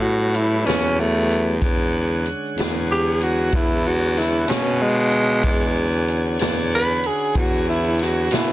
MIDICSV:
0, 0, Header, 1, 5, 480
1, 0, Start_track
1, 0, Tempo, 637620
1, 1220, Time_signature, 12, 3, 24, 8
1, 6418, End_track
2, 0, Start_track
2, 0, Title_t, "Tenor saxophone"
2, 0, Program_c, 0, 66
2, 16, Note_on_c, 0, 66, 75
2, 272, Note_on_c, 0, 64, 74
2, 283, Note_off_c, 0, 66, 0
2, 498, Note_on_c, 0, 61, 91
2, 509, Note_off_c, 0, 64, 0
2, 751, Note_on_c, 0, 57, 91
2, 763, Note_off_c, 0, 61, 0
2, 1211, Note_off_c, 0, 57, 0
2, 2196, Note_on_c, 0, 67, 89
2, 2434, Note_on_c, 0, 66, 79
2, 2445, Note_off_c, 0, 67, 0
2, 2684, Note_on_c, 0, 64, 96
2, 2695, Note_off_c, 0, 66, 0
2, 2918, Note_on_c, 0, 66, 80
2, 2929, Note_off_c, 0, 64, 0
2, 3149, Note_on_c, 0, 64, 74
2, 3160, Note_off_c, 0, 66, 0
2, 3377, Note_off_c, 0, 64, 0
2, 3384, Note_on_c, 0, 61, 93
2, 3630, Note_on_c, 0, 56, 122
2, 3641, Note_off_c, 0, 61, 0
2, 4555, Note_off_c, 0, 56, 0
2, 5082, Note_on_c, 0, 71, 103
2, 5322, Note_on_c, 0, 68, 85
2, 5333, Note_off_c, 0, 71, 0
2, 5556, Note_on_c, 0, 66, 95
2, 5567, Note_off_c, 0, 68, 0
2, 5780, Note_off_c, 0, 66, 0
2, 5790, Note_on_c, 0, 64, 77
2, 6046, Note_on_c, 0, 66, 73
2, 6057, Note_off_c, 0, 64, 0
2, 6280, Note_on_c, 0, 64, 79
2, 6291, Note_off_c, 0, 66, 0
2, 6418, Note_off_c, 0, 64, 0
2, 6418, End_track
3, 0, Start_track
3, 0, Title_t, "Tonewheel organ"
3, 0, Program_c, 1, 16
3, 0, Note_on_c, 1, 54, 60
3, 0, Note_on_c, 1, 55, 59
3, 0, Note_on_c, 1, 59, 60
3, 0, Note_on_c, 1, 61, 57
3, 1184, Note_off_c, 1, 55, 0
3, 1185, Note_off_c, 1, 54, 0
3, 1186, Note_off_c, 1, 61, 0
3, 1190, Note_off_c, 1, 59, 0
3, 1214, Note_on_c, 1, 61, 58
3, 1217, Note_on_c, 1, 78, 63
3, 1218, Note_on_c, 1, 56, 65
3, 1221, Note_on_c, 1, 50, 61
3, 4068, Note_off_c, 1, 61, 0
3, 4069, Note_off_c, 1, 56, 0
3, 4069, Note_off_c, 1, 78, 0
3, 4071, Note_off_c, 1, 50, 0
3, 4094, Note_on_c, 1, 50, 66
3, 4096, Note_on_c, 1, 68, 64
3, 4098, Note_on_c, 1, 61, 67
3, 4099, Note_on_c, 1, 66, 64
3, 6418, Note_off_c, 1, 50, 0
3, 6418, Note_off_c, 1, 61, 0
3, 6418, Note_off_c, 1, 66, 0
3, 6418, Note_off_c, 1, 68, 0
3, 6418, End_track
4, 0, Start_track
4, 0, Title_t, "Baritone saxophone"
4, 0, Program_c, 2, 67
4, 0, Note_on_c, 2, 45, 92
4, 469, Note_off_c, 2, 45, 0
4, 497, Note_on_c, 2, 40, 88
4, 1188, Note_off_c, 2, 40, 0
4, 1223, Note_on_c, 2, 40, 89
4, 1707, Note_off_c, 2, 40, 0
4, 1935, Note_on_c, 2, 40, 87
4, 2627, Note_off_c, 2, 40, 0
4, 2659, Note_on_c, 2, 40, 95
4, 3349, Note_off_c, 2, 40, 0
4, 3369, Note_on_c, 2, 47, 84
4, 4064, Note_off_c, 2, 47, 0
4, 4094, Note_on_c, 2, 40, 96
4, 4786, Note_off_c, 2, 40, 0
4, 4816, Note_on_c, 2, 40, 81
4, 5303, Note_off_c, 2, 40, 0
4, 5534, Note_on_c, 2, 40, 92
4, 6225, Note_off_c, 2, 40, 0
4, 6254, Note_on_c, 2, 47, 84
4, 6418, Note_off_c, 2, 47, 0
4, 6418, End_track
5, 0, Start_track
5, 0, Title_t, "Drums"
5, 258, Note_on_c, 9, 42, 55
5, 334, Note_off_c, 9, 42, 0
5, 501, Note_on_c, 9, 42, 75
5, 522, Note_on_c, 9, 38, 98
5, 576, Note_off_c, 9, 42, 0
5, 597, Note_off_c, 9, 38, 0
5, 984, Note_on_c, 9, 42, 56
5, 1059, Note_off_c, 9, 42, 0
5, 1217, Note_on_c, 9, 36, 97
5, 1218, Note_on_c, 9, 42, 63
5, 1292, Note_off_c, 9, 36, 0
5, 1293, Note_off_c, 9, 42, 0
5, 1698, Note_on_c, 9, 42, 50
5, 1774, Note_off_c, 9, 42, 0
5, 1939, Note_on_c, 9, 42, 68
5, 1960, Note_on_c, 9, 38, 104
5, 2014, Note_off_c, 9, 42, 0
5, 2035, Note_off_c, 9, 38, 0
5, 2419, Note_on_c, 9, 42, 58
5, 2494, Note_off_c, 9, 42, 0
5, 2653, Note_on_c, 9, 42, 62
5, 2656, Note_on_c, 9, 36, 103
5, 2728, Note_off_c, 9, 42, 0
5, 2732, Note_off_c, 9, 36, 0
5, 3139, Note_on_c, 9, 42, 53
5, 3160, Note_on_c, 9, 38, 28
5, 3214, Note_off_c, 9, 42, 0
5, 3235, Note_off_c, 9, 38, 0
5, 3372, Note_on_c, 9, 42, 71
5, 3393, Note_on_c, 9, 38, 97
5, 3447, Note_off_c, 9, 42, 0
5, 3468, Note_off_c, 9, 38, 0
5, 3850, Note_on_c, 9, 42, 61
5, 3925, Note_off_c, 9, 42, 0
5, 4087, Note_on_c, 9, 42, 74
5, 4092, Note_on_c, 9, 36, 92
5, 4163, Note_off_c, 9, 42, 0
5, 4168, Note_off_c, 9, 36, 0
5, 4578, Note_on_c, 9, 42, 57
5, 4653, Note_off_c, 9, 42, 0
5, 4812, Note_on_c, 9, 42, 80
5, 4833, Note_on_c, 9, 38, 91
5, 4887, Note_off_c, 9, 42, 0
5, 4908, Note_off_c, 9, 38, 0
5, 5296, Note_on_c, 9, 42, 59
5, 5372, Note_off_c, 9, 42, 0
5, 5534, Note_on_c, 9, 36, 89
5, 5534, Note_on_c, 9, 42, 74
5, 5609, Note_off_c, 9, 36, 0
5, 5609, Note_off_c, 9, 42, 0
5, 6015, Note_on_c, 9, 42, 51
5, 6036, Note_on_c, 9, 38, 25
5, 6090, Note_off_c, 9, 42, 0
5, 6112, Note_off_c, 9, 38, 0
5, 6255, Note_on_c, 9, 42, 69
5, 6276, Note_on_c, 9, 38, 87
5, 6330, Note_off_c, 9, 42, 0
5, 6351, Note_off_c, 9, 38, 0
5, 6418, End_track
0, 0, End_of_file